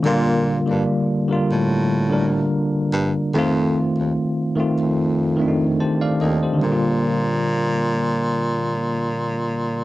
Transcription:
X:1
M:4/4
L:1/16
Q:"Swing 16ths" 1/4=73
K:Bb
V:1 name="Tine electric piano"
z16 | z12 [Gca] [Adf] [Ae] [Gc]- | [Gc] z12 z3 |]
V:2 name="Tine electric piano"
[D,G,B,F]2 z [D,G,B,D]2 z [D,G,FB]3 z [D,G,DB]4 z2 | [E,A,CF]4 z2 [E,A,CF]3 z [E,A,CDE]4 z2 | [D,G,B,F]16 |]
V:3 name="Baritone saxophone" clef=bass
B,,3 G,, z3 A,,4- A,, z2 G,, z | F,,3 E,, z3 F,,4- F,, z2 E,, z | B,,16 |]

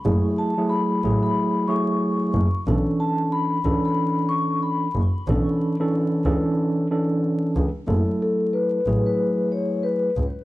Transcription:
X:1
M:4/4
L:1/16
Q:"Swing 16ths" 1/4=92
K:F#m
V:1 name="Vibraphone"
z2 a2 b3 b3 c'6 | z2 a2 b3 b3 c'2 b2 z2 | z16 | z2 A2 B3 B3 c2 B2 z2 |]
V:2 name="Tine electric piano"
[F,A,EG]3 [F,A,EG]3 [F,A,EG]4 [F,A,EG]4- [F,A,EG] z | [E,CDA]6 [E,CDA]6- [E,CDA] z3 | [E,CDA]3 [E,CDA]3 [E,CDA]4 [E,CDA]4- [E,CDA] z | [F,A,EA]6 [F,A,EG]6- [F,A,EG] z3 |]
V:3 name="Double bass" clef=bass
F,,,3 z3 A,,,2 z6 F,,,2 | B,,,3 z3 C,,2 z6 F,,,2 | B,,,3 z3 C,,2 z6 C,,2 | F,,,3 z3 A,,,2 z6 C,,2 |]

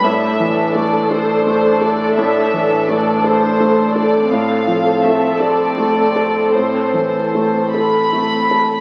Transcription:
X:1
M:6/8
L:1/8
Q:3/8=56
K:Ddor
V:1 name="Violin section"
z6 | z6 | z6 | z3 b3 |]
V:2 name="Violin section"
e2 d c2 d | e2 d c2 d | f2 e d3 | c3 b3 |]
V:3 name="Viola section"
[DA]6- | [DA]6 | [CA]6- | [CA]4- [CA] z |]
V:4 name="Felt piano"
A,, E, A, A A, A | A,, E, A, A A, A | A,, F, A, A A, A | A,, E, A, A A, A |]
V:5 name="Cello section" clef=bass
A,,6- | A,,6 | A,,6- | A,,4- A,, z |]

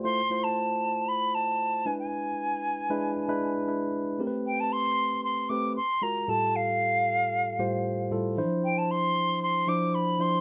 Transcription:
X:1
M:4/4
L:1/16
Q:1/4=115
K:Flyd
V:1 name="Flute"
c'3 a4- a b2 a4 ^g g- | ^g12 z4 | z2 g a c'4 c'2 d'2 c'2 ^a2 | a2 f12 z2 |
z2 g a c'4 c'2 d'2 b2 c'2 |]
V:2 name="Tine electric piano"
[A,EFc] z [A,EFc]4- [A,EFc] z6 z [^G,DEB]2- | [^G,DEB]4 z2 [G,DEB]2 z [G,DEB]2 z [G,DEB]3 z | [A,CG_B=B]4- [A,CG_B=B] z4 z [A,CGB]2 z2 [^G,^E^F^A] z | [A,,G,FGA]4- [A,,G,FGA] z4 z [A,,G,FGc]3 z [A,,G,EFA] z |
[E,F,DEc]4- [E,F,DEc] z4 z [F,DEc]3 z [F,DEc] z |]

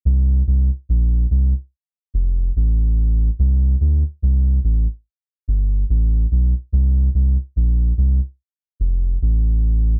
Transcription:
X:1
M:4/4
L:1/16
Q:"Swing 16ths" 1/4=72
K:Bb
V:1 name="Sub bass" clef=bass
C,,2 C,, z B,,,2 C,, z3 F,,,2 A,,,4 | C,,2 D,, z C,,2 A,,, z3 G,,,2 A,,,2 =B,,, z | C,,2 C,, z B,,,2 C,, z3 F,,,2 A,,,4 |]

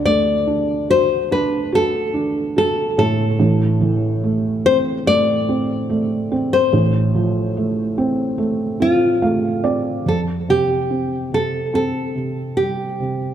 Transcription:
X:1
M:4/4
L:1/16
Q:1/4=72
K:Flyd
V:1 name="Nylon-string guitar"
d4 c2 B2 A4 A2 A2- | A4 z2 c2 d6- d c- | c8- c2 F6 | A2 G4 A2 A4 G4 |]
V:2 name="Felt piano"
[D,,D,A,]2 D2 ^F2 D2 F2 D2 F2 [A,,A,]2 | [A,,,A,,]2 E,2 A,2 C2 A,2 C2 A,2 C2 | [A,,,A,,]2 F,2 A,2 C2 A,2 C2 [A,f]2 [Cd]2 | F,,2 C,2 C2 C,2 C2 C,2 G,2 C,2 |]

